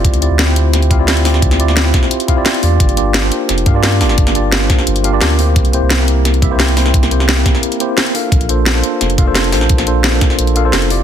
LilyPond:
<<
  \new Staff \with { instrumentName = "Tine electric piano" } { \time 4/4 \key g \dorian \tempo 4 = 174 <c' e' f' g' d''>8 <c' e' f' g' d''>8. <c' e' f' g' c''>4~ <c' e' f' g' c''>16 <c' e' f' g' f''>16 <c' e' f' g' d''>8. <c' e' f' g' d''>8~ | <c' e' f' g' d''>8 <c' e' f' g' d''>8. <c' e' f' g' c''>4~ <c' e' f' g' c''>16 <c' e' f' g' f''>16 <c' e' f' g' d''>8. <bes d' f' g' d''>8~ | <bes d' f' g' d''>8 <bes d' f' g' d''>8. <bes d' f' g' c''>4~ <bes d' f' g' c''>16 <bes d' f' g' f''>16 <bes d' f' g' d''>8. <bes d' f' g' d''>8~ | <bes d' f' g' d''>8 <bes d' f' g' d''>8. <bes d' f' g' c''>4~ <bes d' f' g' c''>16 <bes d' f' g' f''>16 <bes d' f' g' d''>8. <bes c' e' g' c''>8~ |
<bes c' e' g' c''>8 <bes c' e' g' c''>8. <bes c' e' g' bes'>4~ <bes c' e' g' bes'>16 <bes c' e' g' e''>16 <bes c' e' g' c''>8. <bes c' e' g' c''>8~ | <bes c' e' g' c''>8 <bes c' e' g' c''>8. <bes c' e' g' bes'>4~ <bes c' e' g' bes'>16 <bes c' e' g' c''>4 <bes d' f' a' f''>8~ | <bes d' f' a' f''>8 <bes d' f' a' c''>8. <bes d' f' a' c''>4~ <bes d' f' a' c''>16 <bes d' f' a' f''>16 <bes d' f' a' c''>8. <bes d' f' a' c''>8~ | <bes d' f' a' c''>8 <bes d' f' a' c''>8. <bes d' f' a' c''>4~ <bes d' f' a' c''>16 <bes d' f' a' f''>16 <bes d' f' a' c''>8. <c' e' f' g' d''>8 | }
  \new Staff \with { instrumentName = "Sub bass" } { \clef bass \time 4/4 \key g \dorian d,8. d,2.~ d,16 | d,4. r2 e,8 | g,,4. r8 f,,8 g,4 g,,8 | g,,4. r8 g,,4 d,4 |
c,8. c,2.~ c,16 | c,4. r2 r8 | bes,,4. r8 f,,8 f,,4 bes,,8 | bes,,4. r8 bes,,4 f,,4 | }
  \new DrumStaff \with { instrumentName = "Drums" } \drummode { \time 4/4 <hh bd>16 hh16 hh8 <hh sn>8 hh8 <hh sn>16 hh16 <hh bd>8 <hh sn>16 hh16 <hho sn>16 sn16 | <hh bd>16 <hh sn>16 hh16 sn16 <hh sn>8 <hh bd sn>16 sn16 hh16 hh16 <hh bd>8 <hh sn>16 hh16 hho8 | <hh bd>16 hh16 hh8 <hh sn>8 hh8 <hh sn>16 hh16 <hh bd>8 <hh sn>16 hh16 <hho sn>16 sn16 | <hh bd>16 <hh sn>16 hh8 <hh sn>8 <hh bd sn>16 sn16 hh16 hh16 hh8 <hh sn>16 hh16 hho8 |
<hh bd>16 hh16 hh8 <hh sn>8 hh8 <hh sn>16 hh16 <hh bd>8 <hh sn>16 hh16 <hho sn>16 sn16 | <hh bd>16 <hh sn>16 hh16 sn16 <hh sn>8 <hh bd sn>16 sn16 hh16 hh16 hh8 <hh sn>16 hh16 hho8 | <hh bd>16 hh16 hh8 <hh sn>8 hh8 <hh sn>16 hh16 <hh bd>8 <hh sn>16 hh16 <hho sn>16 sn16 | <hh bd>16 <hh sn>16 hh8 <hh sn>8 <hh bd sn>16 sn16 hh16 hh16 hh8 <hh sn>16 hh16 hho8 | }
>>